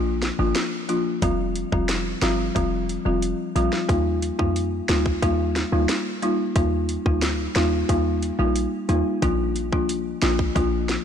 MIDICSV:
0, 0, Header, 1, 4, 480
1, 0, Start_track
1, 0, Key_signature, -3, "major"
1, 0, Tempo, 666667
1, 882, Time_signature, 4, 2, 24, 8
1, 7952, End_track
2, 0, Start_track
2, 0, Title_t, "Marimba"
2, 0, Program_c, 0, 12
2, 280, Note_on_c, 0, 53, 77
2, 280, Note_on_c, 0, 58, 72
2, 282, Note_on_c, 0, 62, 73
2, 284, Note_on_c, 0, 65, 85
2, 397, Note_off_c, 0, 53, 0
2, 398, Note_off_c, 0, 58, 0
2, 399, Note_off_c, 0, 62, 0
2, 400, Note_off_c, 0, 65, 0
2, 639, Note_on_c, 0, 53, 80
2, 642, Note_on_c, 0, 58, 70
2, 643, Note_on_c, 0, 62, 69
2, 644, Note_on_c, 0, 65, 86
2, 757, Note_off_c, 0, 53, 0
2, 758, Note_off_c, 0, 58, 0
2, 759, Note_off_c, 0, 62, 0
2, 760, Note_off_c, 0, 65, 0
2, 881, Note_on_c, 0, 53, 92
2, 883, Note_on_c, 0, 55, 84
2, 884, Note_on_c, 0, 60, 83
2, 885, Note_on_c, 0, 65, 101
2, 998, Note_off_c, 0, 53, 0
2, 999, Note_off_c, 0, 55, 0
2, 1000, Note_off_c, 0, 60, 0
2, 1000, Note_off_c, 0, 65, 0
2, 1240, Note_on_c, 0, 53, 77
2, 1242, Note_on_c, 0, 55, 74
2, 1244, Note_on_c, 0, 60, 73
2, 1245, Note_on_c, 0, 65, 85
2, 1572, Note_off_c, 0, 53, 0
2, 1573, Note_off_c, 0, 55, 0
2, 1574, Note_off_c, 0, 60, 0
2, 1575, Note_off_c, 0, 65, 0
2, 1599, Note_on_c, 0, 53, 78
2, 1601, Note_on_c, 0, 55, 74
2, 1602, Note_on_c, 0, 60, 76
2, 1603, Note_on_c, 0, 65, 88
2, 1821, Note_off_c, 0, 53, 0
2, 1822, Note_off_c, 0, 55, 0
2, 1823, Note_off_c, 0, 60, 0
2, 1823, Note_off_c, 0, 65, 0
2, 1838, Note_on_c, 0, 53, 90
2, 1839, Note_on_c, 0, 55, 85
2, 1841, Note_on_c, 0, 60, 85
2, 1842, Note_on_c, 0, 65, 98
2, 1956, Note_off_c, 0, 53, 0
2, 1957, Note_off_c, 0, 55, 0
2, 1958, Note_off_c, 0, 60, 0
2, 1959, Note_off_c, 0, 65, 0
2, 2199, Note_on_c, 0, 53, 79
2, 2200, Note_on_c, 0, 55, 75
2, 2202, Note_on_c, 0, 60, 72
2, 2204, Note_on_c, 0, 65, 85
2, 2532, Note_off_c, 0, 53, 0
2, 2532, Note_off_c, 0, 55, 0
2, 2533, Note_off_c, 0, 60, 0
2, 2534, Note_off_c, 0, 65, 0
2, 2560, Note_on_c, 0, 53, 77
2, 2562, Note_on_c, 0, 55, 73
2, 2563, Note_on_c, 0, 60, 69
2, 2565, Note_on_c, 0, 65, 87
2, 2781, Note_off_c, 0, 53, 0
2, 2783, Note_off_c, 0, 55, 0
2, 2783, Note_off_c, 0, 60, 0
2, 2784, Note_off_c, 0, 65, 0
2, 2798, Note_on_c, 0, 55, 91
2, 2800, Note_on_c, 0, 58, 83
2, 2801, Note_on_c, 0, 63, 83
2, 2803, Note_on_c, 0, 65, 101
2, 2917, Note_off_c, 0, 55, 0
2, 2917, Note_off_c, 0, 58, 0
2, 2918, Note_off_c, 0, 63, 0
2, 2919, Note_off_c, 0, 65, 0
2, 3158, Note_on_c, 0, 55, 76
2, 3160, Note_on_c, 0, 58, 73
2, 3161, Note_on_c, 0, 63, 70
2, 3163, Note_on_c, 0, 65, 86
2, 3491, Note_off_c, 0, 55, 0
2, 3492, Note_off_c, 0, 58, 0
2, 3493, Note_off_c, 0, 63, 0
2, 3494, Note_off_c, 0, 65, 0
2, 3518, Note_on_c, 0, 55, 81
2, 3521, Note_on_c, 0, 58, 71
2, 3522, Note_on_c, 0, 63, 72
2, 3522, Note_on_c, 0, 65, 87
2, 3741, Note_off_c, 0, 55, 0
2, 3742, Note_off_c, 0, 58, 0
2, 3743, Note_off_c, 0, 63, 0
2, 3743, Note_off_c, 0, 65, 0
2, 3761, Note_on_c, 0, 55, 94
2, 3762, Note_on_c, 0, 58, 88
2, 3765, Note_on_c, 0, 63, 87
2, 3766, Note_on_c, 0, 65, 107
2, 3878, Note_off_c, 0, 55, 0
2, 3879, Note_off_c, 0, 58, 0
2, 3880, Note_off_c, 0, 63, 0
2, 3880, Note_off_c, 0, 65, 0
2, 4122, Note_on_c, 0, 55, 81
2, 4123, Note_on_c, 0, 58, 73
2, 4124, Note_on_c, 0, 63, 73
2, 4126, Note_on_c, 0, 65, 84
2, 4238, Note_off_c, 0, 55, 0
2, 4239, Note_off_c, 0, 58, 0
2, 4240, Note_off_c, 0, 63, 0
2, 4241, Note_off_c, 0, 65, 0
2, 4482, Note_on_c, 0, 55, 76
2, 4484, Note_on_c, 0, 58, 73
2, 4485, Note_on_c, 0, 63, 72
2, 4487, Note_on_c, 0, 65, 84
2, 4599, Note_off_c, 0, 55, 0
2, 4600, Note_off_c, 0, 58, 0
2, 4600, Note_off_c, 0, 63, 0
2, 4601, Note_off_c, 0, 65, 0
2, 4722, Note_on_c, 0, 55, 93
2, 4723, Note_on_c, 0, 58, 81
2, 4725, Note_on_c, 0, 63, 79
2, 4726, Note_on_c, 0, 65, 102
2, 4838, Note_off_c, 0, 55, 0
2, 4839, Note_off_c, 0, 58, 0
2, 4840, Note_off_c, 0, 63, 0
2, 4841, Note_off_c, 0, 65, 0
2, 5082, Note_on_c, 0, 55, 78
2, 5083, Note_on_c, 0, 58, 74
2, 5085, Note_on_c, 0, 63, 71
2, 5086, Note_on_c, 0, 65, 85
2, 5413, Note_off_c, 0, 55, 0
2, 5413, Note_off_c, 0, 58, 0
2, 5414, Note_off_c, 0, 63, 0
2, 5415, Note_off_c, 0, 65, 0
2, 5442, Note_on_c, 0, 55, 78
2, 5444, Note_on_c, 0, 58, 74
2, 5445, Note_on_c, 0, 63, 73
2, 5446, Note_on_c, 0, 65, 93
2, 5663, Note_off_c, 0, 55, 0
2, 5663, Note_off_c, 0, 58, 0
2, 5664, Note_off_c, 0, 63, 0
2, 5665, Note_off_c, 0, 65, 0
2, 5681, Note_on_c, 0, 55, 93
2, 5682, Note_on_c, 0, 58, 90
2, 5684, Note_on_c, 0, 63, 82
2, 5685, Note_on_c, 0, 65, 106
2, 5798, Note_off_c, 0, 55, 0
2, 5798, Note_off_c, 0, 58, 0
2, 5800, Note_off_c, 0, 63, 0
2, 5800, Note_off_c, 0, 65, 0
2, 6040, Note_on_c, 0, 55, 82
2, 6042, Note_on_c, 0, 58, 71
2, 6043, Note_on_c, 0, 63, 73
2, 6044, Note_on_c, 0, 65, 87
2, 6372, Note_off_c, 0, 55, 0
2, 6373, Note_off_c, 0, 58, 0
2, 6373, Note_off_c, 0, 63, 0
2, 6374, Note_off_c, 0, 65, 0
2, 6400, Note_on_c, 0, 55, 81
2, 6401, Note_on_c, 0, 58, 70
2, 6402, Note_on_c, 0, 63, 73
2, 6405, Note_on_c, 0, 65, 86
2, 6622, Note_off_c, 0, 55, 0
2, 6622, Note_off_c, 0, 58, 0
2, 6623, Note_off_c, 0, 63, 0
2, 6624, Note_off_c, 0, 65, 0
2, 6640, Note_on_c, 0, 53, 94
2, 6642, Note_on_c, 0, 58, 81
2, 6643, Note_on_c, 0, 62, 86
2, 6644, Note_on_c, 0, 65, 103
2, 6758, Note_off_c, 0, 53, 0
2, 6758, Note_off_c, 0, 58, 0
2, 6759, Note_off_c, 0, 62, 0
2, 6760, Note_off_c, 0, 65, 0
2, 7000, Note_on_c, 0, 53, 76
2, 7001, Note_on_c, 0, 58, 72
2, 7003, Note_on_c, 0, 62, 75
2, 7005, Note_on_c, 0, 65, 90
2, 7332, Note_off_c, 0, 53, 0
2, 7333, Note_off_c, 0, 58, 0
2, 7334, Note_off_c, 0, 62, 0
2, 7334, Note_off_c, 0, 65, 0
2, 7360, Note_on_c, 0, 53, 85
2, 7361, Note_on_c, 0, 58, 74
2, 7362, Note_on_c, 0, 62, 72
2, 7364, Note_on_c, 0, 65, 92
2, 7582, Note_off_c, 0, 53, 0
2, 7582, Note_off_c, 0, 58, 0
2, 7583, Note_off_c, 0, 62, 0
2, 7584, Note_off_c, 0, 65, 0
2, 7599, Note_on_c, 0, 53, 94
2, 7600, Note_on_c, 0, 58, 87
2, 7602, Note_on_c, 0, 62, 89
2, 7603, Note_on_c, 0, 65, 107
2, 7717, Note_off_c, 0, 53, 0
2, 7718, Note_off_c, 0, 58, 0
2, 7719, Note_off_c, 0, 62, 0
2, 7719, Note_off_c, 0, 65, 0
2, 7952, End_track
3, 0, Start_track
3, 0, Title_t, "808-style bass"
3, 0, Program_c, 1, 38
3, 0, Note_on_c, 1, 34, 102
3, 227, Note_off_c, 1, 34, 0
3, 281, Note_on_c, 1, 32, 97
3, 383, Note_off_c, 1, 32, 0
3, 880, Note_on_c, 1, 29, 105
3, 1186, Note_off_c, 1, 29, 0
3, 1242, Note_on_c, 1, 29, 94
3, 1547, Note_off_c, 1, 29, 0
3, 1599, Note_on_c, 1, 31, 94
3, 1804, Note_off_c, 1, 31, 0
3, 1842, Note_on_c, 1, 29, 107
3, 2147, Note_off_c, 1, 29, 0
3, 2202, Note_on_c, 1, 29, 92
3, 2405, Note_off_c, 1, 29, 0
3, 2562, Note_on_c, 1, 34, 92
3, 2663, Note_off_c, 1, 34, 0
3, 2801, Note_on_c, 1, 39, 114
3, 3107, Note_off_c, 1, 39, 0
3, 3163, Note_on_c, 1, 41, 91
3, 3467, Note_off_c, 1, 41, 0
3, 3522, Note_on_c, 1, 38, 99
3, 3725, Note_off_c, 1, 38, 0
3, 3762, Note_on_c, 1, 39, 113
3, 4067, Note_off_c, 1, 39, 0
3, 4121, Note_on_c, 1, 38, 100
3, 4223, Note_off_c, 1, 38, 0
3, 4721, Note_on_c, 1, 39, 108
3, 5027, Note_off_c, 1, 39, 0
3, 5081, Note_on_c, 1, 38, 88
3, 5387, Note_off_c, 1, 38, 0
3, 5441, Note_on_c, 1, 39, 101
3, 5645, Note_off_c, 1, 39, 0
3, 5682, Note_on_c, 1, 39, 107
3, 5987, Note_off_c, 1, 39, 0
3, 6041, Note_on_c, 1, 34, 94
3, 6244, Note_off_c, 1, 34, 0
3, 6400, Note_on_c, 1, 39, 96
3, 6503, Note_off_c, 1, 39, 0
3, 6641, Note_on_c, 1, 34, 108
3, 7002, Note_on_c, 1, 36, 92
3, 7013, Note_off_c, 1, 34, 0
3, 7307, Note_off_c, 1, 36, 0
3, 7362, Note_on_c, 1, 34, 96
3, 7565, Note_off_c, 1, 34, 0
3, 7602, Note_on_c, 1, 34, 104
3, 7907, Note_off_c, 1, 34, 0
3, 7952, End_track
4, 0, Start_track
4, 0, Title_t, "Drums"
4, 161, Note_on_c, 9, 38, 82
4, 162, Note_on_c, 9, 42, 48
4, 233, Note_off_c, 9, 38, 0
4, 234, Note_off_c, 9, 42, 0
4, 399, Note_on_c, 9, 38, 121
4, 399, Note_on_c, 9, 42, 75
4, 471, Note_off_c, 9, 38, 0
4, 471, Note_off_c, 9, 42, 0
4, 641, Note_on_c, 9, 42, 49
4, 713, Note_off_c, 9, 42, 0
4, 880, Note_on_c, 9, 42, 88
4, 881, Note_on_c, 9, 36, 120
4, 952, Note_off_c, 9, 42, 0
4, 953, Note_off_c, 9, 36, 0
4, 1120, Note_on_c, 9, 42, 55
4, 1192, Note_off_c, 9, 42, 0
4, 1242, Note_on_c, 9, 36, 89
4, 1314, Note_off_c, 9, 36, 0
4, 1360, Note_on_c, 9, 38, 112
4, 1361, Note_on_c, 9, 42, 80
4, 1432, Note_off_c, 9, 38, 0
4, 1433, Note_off_c, 9, 42, 0
4, 1600, Note_on_c, 9, 38, 113
4, 1602, Note_on_c, 9, 42, 56
4, 1672, Note_off_c, 9, 38, 0
4, 1674, Note_off_c, 9, 42, 0
4, 1842, Note_on_c, 9, 36, 103
4, 1842, Note_on_c, 9, 42, 78
4, 1914, Note_off_c, 9, 36, 0
4, 1914, Note_off_c, 9, 42, 0
4, 2083, Note_on_c, 9, 42, 50
4, 2155, Note_off_c, 9, 42, 0
4, 2321, Note_on_c, 9, 42, 75
4, 2393, Note_off_c, 9, 42, 0
4, 2562, Note_on_c, 9, 42, 49
4, 2634, Note_off_c, 9, 42, 0
4, 2683, Note_on_c, 9, 38, 66
4, 2755, Note_off_c, 9, 38, 0
4, 2802, Note_on_c, 9, 36, 123
4, 2802, Note_on_c, 9, 42, 83
4, 2874, Note_off_c, 9, 36, 0
4, 2874, Note_off_c, 9, 42, 0
4, 3042, Note_on_c, 9, 42, 58
4, 3114, Note_off_c, 9, 42, 0
4, 3162, Note_on_c, 9, 36, 95
4, 3234, Note_off_c, 9, 36, 0
4, 3283, Note_on_c, 9, 42, 74
4, 3355, Note_off_c, 9, 42, 0
4, 3521, Note_on_c, 9, 38, 118
4, 3523, Note_on_c, 9, 42, 58
4, 3593, Note_off_c, 9, 38, 0
4, 3595, Note_off_c, 9, 42, 0
4, 3641, Note_on_c, 9, 36, 92
4, 3713, Note_off_c, 9, 36, 0
4, 3762, Note_on_c, 9, 36, 102
4, 3762, Note_on_c, 9, 42, 80
4, 3834, Note_off_c, 9, 36, 0
4, 3834, Note_off_c, 9, 42, 0
4, 4003, Note_on_c, 9, 38, 79
4, 4004, Note_on_c, 9, 42, 51
4, 4075, Note_off_c, 9, 38, 0
4, 4076, Note_off_c, 9, 42, 0
4, 4241, Note_on_c, 9, 38, 114
4, 4241, Note_on_c, 9, 42, 75
4, 4313, Note_off_c, 9, 38, 0
4, 4313, Note_off_c, 9, 42, 0
4, 4482, Note_on_c, 9, 42, 47
4, 4554, Note_off_c, 9, 42, 0
4, 4721, Note_on_c, 9, 36, 119
4, 4721, Note_on_c, 9, 42, 85
4, 4793, Note_off_c, 9, 36, 0
4, 4793, Note_off_c, 9, 42, 0
4, 4959, Note_on_c, 9, 42, 59
4, 5031, Note_off_c, 9, 42, 0
4, 5082, Note_on_c, 9, 36, 92
4, 5154, Note_off_c, 9, 36, 0
4, 5200, Note_on_c, 9, 38, 111
4, 5201, Note_on_c, 9, 42, 78
4, 5272, Note_off_c, 9, 38, 0
4, 5273, Note_off_c, 9, 42, 0
4, 5440, Note_on_c, 9, 38, 118
4, 5442, Note_on_c, 9, 42, 54
4, 5512, Note_off_c, 9, 38, 0
4, 5514, Note_off_c, 9, 42, 0
4, 5682, Note_on_c, 9, 36, 99
4, 5682, Note_on_c, 9, 42, 84
4, 5754, Note_off_c, 9, 36, 0
4, 5754, Note_off_c, 9, 42, 0
4, 5922, Note_on_c, 9, 42, 50
4, 5994, Note_off_c, 9, 42, 0
4, 6160, Note_on_c, 9, 42, 78
4, 6232, Note_off_c, 9, 42, 0
4, 6400, Note_on_c, 9, 42, 46
4, 6472, Note_off_c, 9, 42, 0
4, 6641, Note_on_c, 9, 36, 114
4, 6641, Note_on_c, 9, 42, 85
4, 6713, Note_off_c, 9, 36, 0
4, 6713, Note_off_c, 9, 42, 0
4, 6881, Note_on_c, 9, 42, 58
4, 6953, Note_off_c, 9, 42, 0
4, 7002, Note_on_c, 9, 36, 91
4, 7074, Note_off_c, 9, 36, 0
4, 7122, Note_on_c, 9, 42, 78
4, 7194, Note_off_c, 9, 42, 0
4, 7360, Note_on_c, 9, 38, 116
4, 7363, Note_on_c, 9, 42, 56
4, 7432, Note_off_c, 9, 38, 0
4, 7435, Note_off_c, 9, 42, 0
4, 7481, Note_on_c, 9, 36, 99
4, 7553, Note_off_c, 9, 36, 0
4, 7602, Note_on_c, 9, 36, 104
4, 7602, Note_on_c, 9, 42, 82
4, 7674, Note_off_c, 9, 36, 0
4, 7674, Note_off_c, 9, 42, 0
4, 7841, Note_on_c, 9, 38, 82
4, 7842, Note_on_c, 9, 42, 48
4, 7913, Note_off_c, 9, 38, 0
4, 7914, Note_off_c, 9, 42, 0
4, 7952, End_track
0, 0, End_of_file